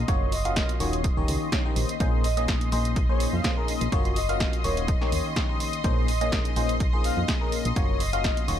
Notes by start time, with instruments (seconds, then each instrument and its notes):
Already playing: analog synth pad D#5 C6
0.08 fm bass F#1, fm electric piano A#3 C#4 F4 F#4 C#5, kick, closed hi-hat
0.32 soft synth lead D#5, open hi-hat
0.45 fm electric piano A#3 C#4 F4 F#4 F5, closed hi-hat
0.56 kick, snare, closed hi-hat
0.69 closed hi-hat
0.80 fm bass D#1, fm electric piano D#3 A#3 C#4 F4 F#4 C#5, open hi-hat
0.93 closed hi-hat
1.04 kick, closed hi-hat
1.17 fm bass D#1, fm electric piano D#3 A#3 C#4 D#4 G4 C#5
1.28 fm bass C#2, open hi-hat
1.52 fm electric piano D#3 A#3 C#4 D#4 C#5, kick, snare, closed hi-hat
1.65 fm electric piano D#3 A#3 C#4 D#4 G4 C5
1.76 fm bass A#1, open hi-hat
1.89 closed hi-hat
2.00 fm bass A#1, fm electric piano A#2 A#3 C#4 D#4 G#4 C5, kick, closed hi-hat
2.24 soft synth lead D#5, open hi-hat
2.37 fm electric piano A#2 A#3 C#4 D#4 G#4 D#5, closed hi-hat
2.48 kick, snare, closed hi-hat
2.61 closed hi-hat
2.72 fm bass A#1, fm electric piano A#2 A#3 C#4 D#4 G#4 C5, soft synth lead D#5, open hi-hat
2.85 closed hi-hat
2.96 kick, closed hi-hat
3.09 fm electric piano A#2 A#3 C#4 D#4 G#4 C5, soft synth lead C#5
3.20 open hi-hat
3.33 fm bass F2, soft synth lead F5
3.44 fm electric piano A#2 A#3 C#4 D#4 G#4 C5, kick, snare, closed hi-hat
3.57 fm electric piano A#2 A#3 C#4 D#4 G#4 A#4
3.68 open hi-hat
3.81 fm bass A#1, closed hi-hat
3.92 fm bass F#1, fm electric piano A#3 C#4 F4 F#4 C#5, kick, closed hi-hat
4.05 closed hi-hat
4.16 soft synth lead D#5, open hi-hat
4.29 fm electric piano A#3 C#4 F4 F#4 F5, closed hi-hat
4.40 kick, snare, closed hi-hat
4.53 closed hi-hat
4.64 fm bass D#1, fm electric piano D#3 A#3 C#4 F4 F#4 C#5, open hi-hat
4.77 closed hi-hat
4.88 kick, closed hi-hat
5.01 fm electric piano D#3 A#3 C#4 D#4 G4 C#5, snare
5.12 fm bass D#2, open hi-hat
5.36 fm electric piano D#3 A#3 C#4 D#4 G4 C#5, kick, snare, closed hi-hat
5.49 fm electric piano D#3 A#3 C#4 D#4 G4 C5
5.60 open hi-hat
5.73 closed hi-hat
5.84 fm bass A#1, fm electric piano A#2 A#3 C#4 D#4 G#4 C5, kick, closed hi-hat
6.08 soft synth lead D#5, open hi-hat
6.21 fm electric piano A#2 A#3 C#4 D#4 G#4 D#5, closed hi-hat
6.32 kick, snare, closed hi-hat
6.45 closed hi-hat
6.56 fm bass A#1, fm electric piano A#2 A#3 C#4 D#4 G#4 C5, soft synth lead D#5, open hi-hat
6.69 closed hi-hat
6.80 kick, closed hi-hat
6.93 fm electric piano A#2 A#3 C#4 D#4 G#4 C5
7.04 soft synth lead F5, open hi-hat
7.17 fm bass F2
7.28 fm electric piano A#2 A#3 C#4 D#4 G#4 C5, kick, snare, closed hi-hat
7.41 fm electric piano A#2 A#3 C#4 D#4 G#4 A#4
7.52 open hi-hat
7.65 fm bass A#1, closed hi-hat
7.76 fm bass F#1, fm electric piano A#3 C#4 F4 F#4 C#5, kick, closed hi-hat
8.00 soft synth lead D#5, open hi-hat
8.13 fm electric piano A#3 C#4 F4 F#4 F5, closed hi-hat
8.24 kick, snare, closed hi-hat
8.37 closed hi-hat
8.48 fm bass D#1, fm electric piano D#3 A#3 C#4 F4 F#4 C#5, open hi-hat